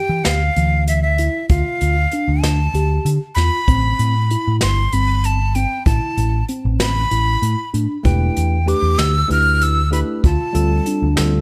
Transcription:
0.00 0.39 G4 medium
0.00 0.26 G5 medium
0.09 0.21 E3 medium
0.24 0.49 D2 medium
0.24 0.87 F5 medium
0.24 snare medium
0.24 closed hi-hat medium
0.56 1.28 D2 medium
0.56 1.02 E3 medium
0.56 closed hi-hat medium
0.87 1.02 E5 medium
0.87 closed hi-hat medium
1.03 1.46 E5 medium
1.18 1.41 E4 medium
1.18 closed hi-hat medium
1.49 1.62 D2 medium
1.49 1.96 F4 medium
1.49 2.43 F5 medium
1.49 kick loud
1.49 closed hi-hat medium
1.81 2.05 D2 medium
1.81 closed hi-hat medium
2.12 2.58 D4 medium
2.12 closed hi-hat medium
2.28 2.40 D2 medium
2.42 2.67 D2 loud
2.42 3.09 A5 medium
2.42 snare medium
2.42 closed hi-hat medium
2.74 2.98 D2 medium
2.74 3.20 G4 medium
2.74 closed hi-hat medium
3.05 3.17 D3 medium
3.05 closed hi-hat medium
3.35 3.48 E2 medium
3.35 3.60 F4 medium
3.35 4.57 B5 loud
3.35 snare soft
3.35 closed hi-hat medium
3.68 3.92 A1 loud
3.68 4.14 C4 medium
3.68 kick loud
3.68 closed hi-hat medium
3.99 4.35 A2 medium
3.99 closed hi-hat medium
4.30 4.76 E4 medium
4.30 closed hi-hat medium
4.47 4.59 A2 medium
4.61 4.86 G1 medium
4.61 4.95 C6 loud
4.61 snare loud
4.61 closed hi-hat medium
4.92 5.64 G1 medium
4.92 5.39 C4 medium
4.92 5.27 B5 loud
4.92 closed hi-hat medium
5.24 5.57 A5 medium
5.24 closed hi-hat medium
5.55 5.78 C4 medium
5.55 5.86 G5 medium
5.55 closed hi-hat medium
5.86 5.98 A1 medium
5.86 6.32 E4 medium
5.86 6.45 A5 medium
5.86 kick loud
5.86 closed hi-hat medium
6.18 6.41 A1 medium
6.18 closed hi-hat medium
6.48 6.94 C4 medium
6.48 closed hi-hat medium
6.65 6.77 A1 medium
6.80 7.04 A1 loud
6.80 7.70 B5 loud
6.80 snare loud
6.80 closed hi-hat medium
7.11 7.35 A1 medium
7.11 7.57 E4 medium
7.11 closed hi-hat medium
7.42 7.54 A2 medium
7.42 closed hi-hat medium
7.74 7.86 A2 medium
7.74 7.96 D4 medium
7.74 closed hi-hat medium
8.03 8.29 E1 loud
8.03 8.56 A3 medium
8.03 8.57 D4 medium
8.03 8.50 E4 medium
8.03 8.57 G4 medium
8.03 8.57 B4 medium
8.03 8.70 G5 medium
8.03 kick loud
8.03 closed hi-hat medium
8.36 8.73 E2 medium
8.36 closed hi-hat medium
8.66 9.19 A3 medium
8.66 9.19 D4 medium
8.66 9.13 G4 medium
8.66 9.20 G4 medium
8.66 9.20 B4 medium
8.66 9.00 D6 medium
8.66 closed hi-hat medium
8.82 8.95 E2 medium
8.98 9.22 D2 medium
8.98 9.30 E6 loud
8.98 snare loud
8.98 closed hi-hat medium
9.28 10.02 D2 medium
9.28 9.81 A3 medium
9.28 9.81 D4 medium
9.28 9.76 E4 medium
9.28 9.81 G4 medium
9.28 9.82 B4 medium
9.28 9.64 F6 loud
9.28 closed hi-hat medium
9.61 9.92 E6 loud
9.61 closed hi-hat medium
9.91 10.23 A3 medium
9.91 10.23 D4 medium
9.91 10.16 E4 medium
9.91 10.24 G4 medium
9.91 10.24 B4 medium
9.91 10.00 B5 medium
9.91 closed hi-hat medium
10.24 10.36 D2 medium
10.24 10.70 F4 medium
10.24 11.14 A5 medium
10.24 kick medium
10.24 closed hi-hat medium
10.53 10.79 D2 medium
10.53 11.06 G3 medium
10.53 11.06 C4 medium
10.53 11.07 F4 medium
10.53 11.07 A4 medium
10.53 closed hi-hat medium
10.86 11.32 D4 medium
10.86 closed hi-hat medium
11.02 11.14 D2 medium
11.16 11.41 D2 medium
11.16 11.41 G3 medium
11.16 11.41 C4 medium
11.16 11.41 F4 medium
11.16 11.41 A4 medium
11.16 snare loud
11.16 closed hi-hat medium

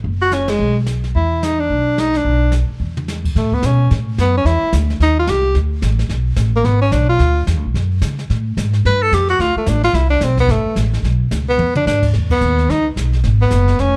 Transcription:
0.04 0.57 F#1 medium
0.04 brush sweep soft
0.22 0.35 F#4 medium
0.32 0.51 C#4 medium
0.32 snare medium
0.32 hi-hat pedal soft
0.48 0.77 G#3 medium
0.48 snare medium
0.48 ride medium
0.59 1.12 B1 medium
0.59 brush sweep soft
0.86 snare medium
0.86 hi-hat pedal soft
1.04 snare soft
1.14 1.67 E2 medium
1.14 1.45 E4 medium
1.14 brush sweep soft
1.43 1.61 D#4 medium
1.43 snare medium
1.43 hi-hat pedal soft
1.60 2.01 D4 medium
1.70 2.22 B1 medium
1.70 brush sweep soft
1.98 2.18 D#4 medium
1.98 snare soft
1.98 hi-hat pedal soft
2.14 2.54 D4 medium
2.14 snare soft
2.25 2.66 B1 medium
2.25 brush sweep soft
2.52 snare soft
2.52 hi-hat pedal medium
2.69 muted upright bass stroke soft
2.80 3.32 E2 medium
2.97 mid tom soft
3.08 snare soft
3.08 hi-hat pedal soft
3.24 kick medium
3.24 crash medium
3.35 3.62 A2 medium
3.35 3.55 A3 medium
3.35 brush sweep soft
3.35 snare soft
3.52 3.67 B3 medium
3.52 kick soft
3.62 3.89 B2 medium
3.62 3.92 C#4 medium
3.62 snare medium
3.62 hi-hat pedal medium
3.91 4.17 A2 medium
3.91 brush sweep soft
3.91 snare soft
4.18 4.44 F#2 medium
4.18 4.35 B3 medium
4.18 snare medium
4.18 hi-hat pedal soft
4.37 4.48 C#4 medium
4.45 4.60 E2 medium
4.45 4.73 E4 medium
4.45 brush sweep soft
4.45 snare soft
4.63 muted upright bass stroke soft
4.73 4.99 D2 medium
4.73 snare medium
4.73 hi-hat pedal medium
4.90 snare soft
5.00 5.27 D#2 medium
5.00 5.17 D#4 medium
5.00 brush sweep soft
5.00 snare soft
5.19 5.31 F4 medium
5.27 5.54 C2 medium
5.27 5.56 G4 medium
5.27 snare medium
5.27 hi-hat pedal soft
5.55 5.82 D2 medium
5.55 brush sweep soft
5.55 snare soft
5.82 6.08 A1 medium
5.82 snare medium
5.82 hi-hat pedal soft
5.99 snare soft
6.09 6.36 B1 medium
6.09 brush sweep soft
6.09 snare soft
6.36 6.64 A1 medium
6.36 snare medium
6.36 hi-hat pedal medium
6.56 6.67 A#3 medium
6.64 6.91 G#1 medium
6.64 6.81 B3 medium
6.64 brush sweep soft
6.64 snare soft
6.81 6.94 C#4 medium
6.92 7.19 B1 medium
6.92 7.09 D4 medium
6.92 snare medium
6.92 hi-hat pedal medium
7.09 7.45 F4 medium
7.19 7.46 D2 medium
7.19 brush sweep soft
7.19 snare soft
7.47 7.56 E2 medium
7.47 snare medium
7.47 hi-hat pedal soft
7.56 7.65 D2 soft
7.65 7.74 B1 medium
7.74 8.01 F#2 medium
7.74 brush sweep soft
7.74 snare soft
8.01 8.29 C#3 medium
8.01 snare medium
8.01 hi-hat pedal medium
8.19 snare soft
8.30 8.56 A2 medium
8.30 brush sweep soft
8.30 snare soft
8.57 8.84 G#2 medium
8.57 snare medium
8.57 hi-hat pedal soft
8.73 snare soft
8.85 9.11 G2 medium
8.85 9.04 B4 medium
8.85 brush sweep soft
8.85 snare soft
9.02 9.15 A4 medium
9.12 9.38 F2 medium
9.12 9.29 G4 medium
9.12 snare medium
9.12 hi-hat pedal soft
9.29 9.42 F#4 medium
9.29 snare soft
9.39 9.55 D2 medium
9.39 9.57 F4 medium
9.39 brush sweep soft
9.39 snare soft
9.56 9.71 A3 medium
9.56 muted upright bass stroke soft
9.66 9.93 A1 medium
9.66 9.83 D4 medium
9.66 snare medium
9.66 hi-hat pedal medium
9.83 9.96 F4 loud
9.83 snare soft
9.93 10.21 C2 medium
9.93 10.10 E4 medium
9.93 brush sweep medium
9.93 snare soft
10.10 10.25 D4 medium
10.21 10.48 B1 medium
10.21 10.39 C4 medium
10.21 snare medium
10.21 hi-hat pedal soft
10.37 10.53 B3 medium
10.37 kick soft
10.37 snare soft
10.48 10.64 G1 medium
10.48 10.78 A3 medium
10.48 brush sweep soft
10.48 snare soft
10.65 muted upright bass stroke soft
10.76 11.02 A1 medium
10.76 snare medium
10.76 hi-hat pedal soft
10.93 snare soft
11.03 11.30 B1 medium
11.03 brush sweep soft
11.03 snare soft
11.31 11.57 C#2 medium
11.31 snare medium
11.31 hi-hat pedal medium
11.49 11.74 B3 medium
11.58 11.85 E2 medium
11.58 high tom soft
11.75 11.86 D4 medium
11.75 mid tom medium
11.86 12.13 G#2 medium
11.86 12.08 D4 medium
11.86 snare soft
11.86 hi-hat pedal medium
12.02 kick medium
12.02 crash medium
12.13 12.40 E2 medium
12.13 brush sweep soft
12.13 snare soft
12.30 12.72 B3 medium
12.30 kick medium
12.30 ride medium
12.41 12.68 D#2 medium
12.41 hi-hat pedal soft
12.58 snare soft
12.69 12.95 C#2 medium
12.69 12.86 D#4 medium
12.69 brush sweep soft
12.69 snare soft
12.96 13.23 B1 medium
12.96 snare medium
12.96 hi-hat pedal soft
13.13 snare soft
13.24 13.51 G#1 medium
13.24 brush sweep soft
13.24 snare soft
13.42 13.82 B3 medium
13.51 13.78 F#1 medium
13.51 snare medium
13.51 hi-hat pedal medium
13.68 snare soft
13.79 13.97 F1 medium
13.79 13.97 C#4 medium
13.79 brush sweep soft
13.79 snare soft

